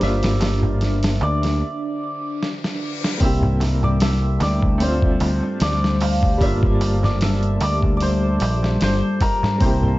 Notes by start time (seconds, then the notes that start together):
Already playing: G3 D4 C5 D5
0.00 G1 A#3 D4 E5, snare, open hi-hat, darbuka tek
0.05 F4
0.23 snare, open hi-hat, darbuka dum
0.41 snare, open hi-hat, darbuka tek
0.63 darbuka tek, darbuka dum
0.81 snare, open hi-hat, darbuka tek
1.03 snare, open hi-hat
1.21 D2 D5, darbuka tek
1.42 snare, open hi-hat, darbuka tek
1.61 reverse cymbal
2.43 snare
2.64 snare
3.04 snare
3.17 C2 G3 A#3 C4 A5, kick, open hi-hat, darbuka tek
3.22 E4 G4 E5
3.43 darbuka dum
3.60 snare, open hi-hat, darbuka tek
3.83 D5, darbuka tek, darbuka dum
4.00 E5, snare, open hi-hat, darbuka tek
4.40 D2 D5, snare, open hi-hat, darbuka tek
4.62 kick, darbuka tek
4.78 A3 C4, open hi-hat, darbuka tek
4.82 D4 F4 C5
5.02 kick
5.20 D2, open hi-hat, darbuka tek
5.43 darbuka tek
5.60 D2 D5, snare, open hi-hat, darbuka tek
5.84 snare
6.01 F5, open hi-hat, darbuka tek
6.23 kick, darbuka tek
6.38 G1 G3 A#3, kick, open hi-hat, darbuka tek
6.42 D4 F4 E5
6.63 kick, darbuka dum
6.81 open hi-hat, darbuka tek
7.03 D5, snare, darbuka tek, darbuka dum
7.21 E5, snare, open hi-hat, darbuka tek
7.43 closed hi-hat
7.61 D2 D5, open hi-hat, darbuka tek
7.83 kick, darbuka tek
7.97 D5, open hi-hat
8.02 C5, darbuka tek
8.40 A#1, open hi-hat, darbuka tek
8.63 snare, darbuka tek
8.81 G1 C5, snare, open hi-hat, darbuka tek
9.21 A#4, kick, open hi-hat, darbuka tek
9.43 snare, darbuka tek, darbuka dum
9.58 C2 A#3 C4 C5, kick, open hi-hat, darbuka tek
9.63 E4 G4
9.83 darbuka dum